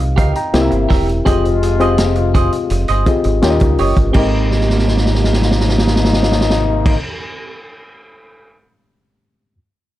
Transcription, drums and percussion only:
0.00 closed hi-hat medium
0.18 kick medium
0.18 closed hi-hat medium
0.35 closed hi-hat medium
0.54 snare loud
0.54 closed hi-hat medium
0.72 closed hi-hat soft
0.90 kick medium
0.90 snare soft
0.90 open hi-hat medium
1.09 closed hi-hat medium
1.26 kick loud
1.26 closed hi-hat medium
1.45 closed hi-hat soft
1.63 closed hi-hat medium
1.80 closed hi-hat soft
1.98 snare loud
1.98 closed hi-hat loud
2.15 closed hi-hat soft
2.35 kick loud
2.35 closed hi-hat medium
2.52 closed hi-hat medium
2.70 closed hi-hat medium
2.88 closed hi-hat medium
3.06 kick medium
3.06 closed hi-hat medium
3.24 closed hi-hat medium
3.42 snare loud
3.42 closed hi-hat medium
3.60 kick medium
3.60 closed hi-hat soft
3.78 open hi-hat medium
3.97 kick medium
3.97 closed hi-hat medium
4.14 kick loud
4.14 crash medium
4.51 snare soft
4.61 snare soft
4.70 snare medium
4.78 snare soft
4.88 snare medium
4.97 snare medium
5.06 snare medium
5.14 snare medium
5.24 snare medium
5.33 snare medium
5.42 snare medium
5.51 snare medium
5.60 snare medium
5.69 snare medium
5.78 snare medium
5.87 snare medium
5.96 snare medium
6.04 snare medium
6.13 snare medium
6.23 snare medium
6.32 snare medium
6.41 snare medium
6.50 snare medium
6.86 kick loud
6.86 crash loud

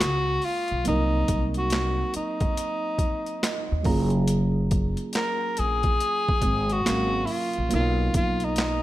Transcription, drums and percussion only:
0.01 snare loud
0.01 clap medium
0.01 closed hi-hat medium
0.42 open hi-hat soft
0.68 closed hi-hat soft
0.85 closed hi-hat medium
1.28 kick medium
1.28 closed hi-hat medium
1.54 closed hi-hat soft
1.70 snare loud
1.70 clap medium
1.70 closed hi-hat medium
2.14 closed hi-hat medium
2.40 kick medium
2.40 closed hi-hat soft
2.57 closed hi-hat medium
2.99 kick medium
2.99 closed hi-hat medium
3.26 closed hi-hat soft
3.43 snare loud
3.43 clap medium
3.43 closed hi-hat medium
3.84 kick loud
3.84 open hi-hat soft
4.10 closed hi-hat soft
4.28 closed hi-hat medium
4.71 kick medium
4.71 closed hi-hat medium
4.97 closed hi-hat soft
5.13 snare loud
5.13 clap medium
5.13 closed hi-hat medium
5.57 closed hi-hat medium
5.83 kick medium
5.83 closed hi-hat soft
6.00 closed hi-hat medium
6.29 kick loud
6.42 kick medium
6.42 closed hi-hat medium
6.70 closed hi-hat soft
6.86 snare medium
6.86 clap medium
6.86 closed hi-hat medium
7.27 open hi-hat soft
7.53 closed hi-hat soft
7.71 closed hi-hat medium
8.14 kick medium
8.14 closed hi-hat medium
8.40 closed hi-hat soft
8.56 snare loud
8.56 clap medium
8.56 closed hi-hat medium

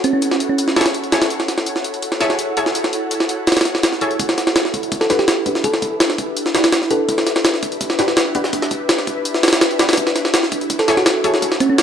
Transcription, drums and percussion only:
0.04 closed hi-hat medium
0.22 closed hi-hat medium
0.31 snare soft
0.40 closed hi-hat medium
0.58 closed hi-hat medium
0.68 snare soft
0.76 snare medium
0.76 closed hi-hat medium
0.81 snare medium
0.81 closed hi-hat medium
0.86 snare loud
0.86 closed hi-hat medium
0.94 closed hi-hat medium
1.04 closed hi-hat soft
1.12 snare loud
1.12 closed hi-hat medium
1.22 snare loud
1.22 closed hi-hat medium
1.30 closed hi-hat medium
1.40 snare medium
1.48 snare soft
1.48 closed hi-hat medium
1.58 snare medium
1.66 closed hi-hat medium
1.76 snare soft
1.84 closed hi-hat medium
1.94 closed hi-hat soft
2.02 closed hi-hat medium
2.12 snare soft
2.21 snare medium
2.21 closed hi-hat medium
2.30 snare soft
2.39 closed hi-hat medium
2.57 closed hi-hat medium
2.66 snare soft
2.75 closed hi-hat medium
2.84 snare soft
2.93 closed hi-hat medium
3.11 closed hi-hat medium
3.20 snare soft
3.29 closed hi-hat medium
3.47 snare medium
3.47 closed hi-hat medium
3.52 snare medium
3.52 closed hi-hat medium
3.57 snare medium
3.57 closed hi-hat medium
3.61 snare medium
3.61 closed hi-hat medium
3.65 snare soft
3.65 closed hi-hat medium
3.75 snare medium
3.83 snare loud
3.83 closed hi-hat medium
3.93 snare soft
4.01 closed hi-hat medium
4.11 closed hi-hat soft
4.20 kick loud
4.20 closed hi-hat medium
4.29 snare medium
4.38 snare soft
4.38 closed hi-hat medium
4.47 snare medium
4.56 snare loud
4.56 closed hi-hat medium
4.65 snare soft
4.74 kick medium
4.74 closed hi-hat medium
4.83 closed hi-hat soft
4.92 kick loud
4.92 closed hi-hat medium
5.01 snare soft
5.10 snare medium
5.10 closed hi-hat medium
5.19 snare soft
5.28 snare loud
5.28 closed hi-hat medium
5.46 kick medium
5.46 closed hi-hat medium
5.55 snare soft
5.64 kick loud
5.64 closed hi-hat medium
5.74 snare soft
5.82 kick loud
5.82 closed hi-hat medium
6.00 snare loud
6.00 closed hi-hat medium
6.10 snare medium
6.18 kick medium
6.18 closed hi-hat medium
6.37 closed hi-hat medium
6.46 snare soft
6.55 snare loud
6.55 closed hi-hat medium
6.64 snare loud
6.64 closed hi-hat medium
6.72 snare loud
6.72 closed hi-hat medium
6.82 snare soft
6.91 closed hi-hat medium
7.09 kick loud
7.09 closed hi-hat medium
7.18 snare medium
7.27 snare soft
7.27 closed hi-hat medium
7.36 snare medium
7.45 snare loud
7.45 closed hi-hat medium
7.54 snare soft
7.63 kick medium
7.63 closed hi-hat medium
7.72 closed hi-hat soft
7.81 kick loud
7.81 closed hi-hat medium
7.90 snare soft
7.99 snare medium
7.99 closed hi-hat medium
8.08 snare soft
8.17 snare loud
8.17 closed hi-hat medium
8.35 kick medium
8.35 closed hi-hat medium
8.44 snare soft
8.53 kick loud
8.53 closed hi-hat medium
8.62 snare soft
8.71 kick medium
8.71 closed hi-hat medium
8.89 snare loud
8.89 closed hi-hat medium
8.98 snare soft
9.07 kick loud
9.07 closed hi-hat medium
9.25 closed hi-hat medium
9.34 snare soft
9.43 snare medium
9.43 closed hi-hat medium
9.48 snare medium
9.48 closed hi-hat medium
9.53 snare loud
9.53 closed hi-hat medium
9.61 snare loud
9.61 closed hi-hat medium
9.71 closed hi-hat soft
9.79 snare loud
9.79 closed hi-hat medium
9.89 snare medium
9.89 closed hi-hat medium
9.93 snare medium
9.93 closed hi-hat medium
9.97 kick loud
9.97 closed hi-hat medium
10.07 snare medium
10.16 snare soft
10.16 closed hi-hat medium
10.25 snare medium
10.34 snare loud
10.34 closed hi-hat medium
10.43 snare soft
10.52 kick loud
10.52 closed hi-hat medium
10.61 closed hi-hat soft
10.70 kick loud
10.70 closed hi-hat medium
10.79 snare medium
10.88 snare medium
10.88 closed hi-hat medium
10.97 snare soft
11.06 snare loud
11.06 closed hi-hat medium
11.24 kick loud
11.24 closed hi-hat medium
11.34 snare soft
11.42 kick loud
11.42 closed hi-hat medium
11.52 snare medium
11.60 kick loud
11.60 closed hi-hat medium
11.78 snare loud
11.78 closed hi-hat medium

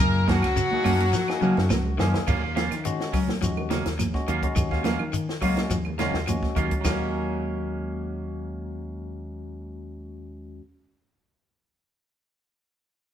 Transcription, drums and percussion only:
0.00 kick loud
0.00 ride bell medium
0.00 claves medium
0.28 kick medium
0.28 snare medium
0.28 ride bell medium
0.28 high conga medium
0.28 shekere soft
0.42 snare soft
0.42 ride bell medium
0.42 claves medium
0.56 ride bell medium
0.56 low conga medium
0.56 shekere medium
0.71 high conga medium
0.84 open hi-hat medium
0.84 high conga medium
0.84 low conga medium
0.84 claves medium
0.84 shekere soft
1.00 ride bell medium
1.13 snare medium
1.13 shekere loud
1.28 snare medium
1.28 claves medium
1.42 low conga medium
1.42 shekere soft
1.57 snare medium
1.57 high conga medium
1.70 snare medium
1.70 high conga loud
1.70 claves medium
1.70 shekere medium
1.85 low conga medium
1.99 snare medium
1.99 low conga medium
1.99 shekere soft
2.14 snare medium
2.14 low conga loud
2.27 kick medium
2.27 crash medium
2.27 high conga soft
2.27 low conga medium
2.27 claves medium
2.27 shekere medium
2.57 snare medium
2.57 closed hi-hat medium
2.57 high conga medium
2.57 shekere soft
2.71 snare soft
2.71 closed hi-hat medium
2.71 claves medium
2.85 closed hi-hat medium
2.85 high conga soft
2.85 shekere medium
3.00 snare medium
3.13 kick medium
3.13 snare soft
3.13 open hi-hat medium
3.13 claves medium
3.13 shekere soft
3.28 snare medium
3.28 high conga medium
3.28 low conga medium
3.42 snare soft
3.42 closed hi-hat medium
3.42 high conga soft
3.42 shekere medium
3.57 low conga medium
3.57 claves medium
3.71 snare medium
3.71 closed hi-hat medium
3.71 high conga medium
3.71 shekere soft
3.86 snare medium
3.86 closed hi-hat medium
3.99 snare soft
3.99 closed hi-hat medium
3.99 high conga medium
3.99 claves medium
3.99 shekere medium
4.14 kick medium
4.14 snare soft
4.28 closed hi-hat soft
4.28 shekere soft
4.43 kick medium
4.43 closed hi-hat medium
4.56 kick medium
4.56 closed hi-hat medium
4.56 high conga soft
4.56 low conga medium
4.56 claves medium
4.56 shekere medium
4.71 kick medium
4.71 snare soft
4.84 snare medium
4.84 closed hi-hat medium
4.84 high conga medium
4.84 shekere soft
4.99 claves medium
5.13 closed hi-hat medium
5.13 high conga soft
5.13 shekere medium
5.29 snare medium
5.42 kick medium
5.42 open hi-hat medium
5.42 claves medium
5.42 shekere soft
5.57 snare medium
5.57 closed hi-hat medium
5.57 high conga medium
5.57 low conga medium
5.70 snare soft
5.70 closed hi-hat medium
5.70 high conga soft
5.70 shekere medium
5.85 low conga medium
5.85 claves medium
5.99 snare medium
5.99 closed hi-hat soft
5.99 high conga medium
5.99 shekere soft
6.14 snare medium
6.27 closed hi-hat medium
6.27 high conga medium
6.27 claves medium
6.27 shekere medium
6.43 kick medium
6.43 snare soft
6.56 kick medium
6.56 closed hi-hat soft
6.56 shekere soft
6.71 kick medium
6.71 closed hi-hat medium
6.85 kick medium
6.85 snare medium
6.85 crash medium
6.85 low conga loud
6.85 claves medium
6.85 shekere medium

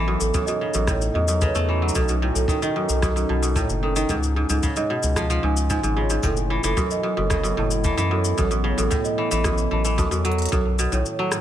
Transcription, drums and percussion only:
0.21 cabasa medium
0.34 kick loud
0.34 cabasa medium
0.47 cabasa soft
0.74 cabasa medium
0.87 kick loud
0.87 cross-stick medium
0.87 cabasa medium
1.01 cabasa soft
1.28 cabasa medium
1.41 kick loud
1.41 cabasa medium
1.55 cabasa soft
1.89 cabasa medium
1.95 kick loud
1.95 cabasa medium
2.08 cabasa soft
2.36 cabasa medium
2.48 kick loud
2.48 cabasa medium
2.62 cabasa soft
2.89 cabasa medium
3.02 kick loud
3.02 cross-stick medium
3.02 cabasa medium
3.17 cabasa soft
3.43 cabasa medium
3.56 kick loud
3.56 cabasa medium
3.70 cabasa soft
3.96 cabasa medium
4.09 kick medium
4.09 cabasa medium
4.23 cabasa soft
4.50 cabasa medium
4.63 kick loud
4.63 cabasa medium
4.76 cabasa soft
5.03 cabasa medium
5.16 kick loud
5.16 cross-stick medium
5.16 cabasa medium
5.30 cabasa soft
5.57 cabasa medium
5.70 kick loud
5.70 cabasa medium
5.84 cabasa soft
6.10 cabasa medium
6.23 kick medium
6.23 cabasa soft
6.37 cabasa soft
6.64 cabasa medium
6.77 kick loud
6.77 cabasa medium
6.91 cabasa soft
7.30 kick loud
7.30 cross-stick medium
7.30 cabasa medium
7.45 cabasa soft
7.71 cabasa medium
7.84 kick loud
7.84 cabasa medium
7.98 cabasa soft
8.25 cabasa medium
8.38 kick loud
8.38 cabasa medium
8.51 cabasa soft
8.78 cabasa medium
8.91 kick loud
8.91 cabasa medium
9.05 cabasa soft
9.32 cabasa medium
9.44 kick loud
9.44 cross-stick medium
9.44 cabasa medium
9.58 cabasa soft
9.85 cabasa medium
9.98 kick loud
9.98 cabasa medium
10.12 cabasa soft
10.25 closed hi-hat medium
10.32 closed hi-hat medium
10.38 closed hi-hat soft
10.42 closed hi-hat soft
10.45 closed hi-hat medium
10.49 kick loud
10.49 closed hi-hat medium
10.49 cabasa soft
10.79 cabasa medium
10.92 cabasa soft
11.06 cabasa soft
11.32 cross-stick medium
11.32 cabasa medium

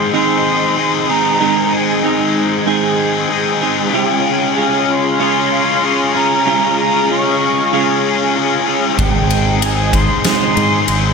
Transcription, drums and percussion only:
8.99 kick loud
8.99 ride medium
9.30 ride medium
9.62 ride medium
9.93 kick medium
9.93 ride medium
10.24 snare loud
10.24 ride medium
10.57 ride medium
10.88 ride medium

